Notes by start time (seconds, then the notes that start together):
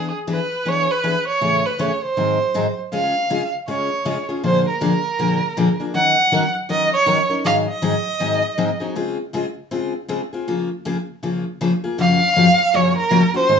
Already playing: E3 B3 D4 G#4
0.27 E3 B3 D4 G#4 B4
0.65 E3 B3 D4 G#4 C#5
0.91 B4
1.03 E3 B3 D4 G#4
1.28 C#5
1.41 A2 C#3 E3 A3 C#4 G#4
1.65 B4
1.79 A2 C#3 E3 A3 C#4 G#4 C#5
2.04 C5
2.17 G#2 D#3 F#3 C4 D#4 G#4
2.54 G#2 D#3 F#3 C4 D#4 G#4
2.92 C#3 G#3 C#4 F4 G#4 F5
3.30 C#3 G#3 C#4 F4 G#4
3.68 C#3 G#3 C#4 F4 G#4 C#5
4.05 C#3 G#3 C#4 F4 G#4
4.29 C#4 F4 G#4
4.43 A#2 D3 F3 A#3 D4 G#4 C5
4.68 A#4
4.81 A#2 D3 F3 A#3 D4 G#4
5.19 A#2 D3 F3 A#3 D4 G#4
5.57 A#2 D3 F3 A#3 D4 G#4
5.80 F3 A#3 D4 G#4
5.94 D#3 F#3 C#4 D#4 A#4 F#5
6.32 D#3 F#3 C#4 D#4 A#4
6.69 D#3 F#3 C#4 D#4 A#4 D#5
6.93 C#5
7.06 D#3 F#3 C#4 D#4 A#4
7.30 C#4 D#4 A#4
7.44 G#2 D#3 F#3 C4 D#4 G#4 F5
7.69 D#5
7.82 G#2 D#3 F#3 C4 D#4 G#4
8.20 G#2 D#3 F#3 C4 D#4 G#4
8.58 G#2 D#3 F#3 C4 D#4 G#4
8.80 F#3 C4 D#4 G#4
8.96 C#3 G#3 C4 F4 G#4
9.33 C#3 G#3 C4 F4 G#4
9.71 C#3 G#3 C4 F4 G#4
10.08 C#3 G#3 C4 F4 G#4
10.33 C4 F4 G#4
10.48 C#3 F3 A#3 F4 G#4
10.85 C#3 F3 A#3 F4 G#4
11.23 C#3 F3 A#3 F4 G#4
11.61 C#3 F3 A#3 F4 G#4
11.84 A#3 F4 G#4
11.98 F#2 C#3 F3 A#3 C#4 F#4 F5
12.36 F#2 C#3 F3 A#3 C#4 F#4
12.74 F#2 C#3 F3 A#3 C#4 F#4 C#5
12.98 A#4
13.11 F#2 C#3 F3 A#3 C#4 F#4
13.34 F3 A#3 C#4 F#4 C5
13.49 G#2 D#3 G#3 C4 D#4 G#4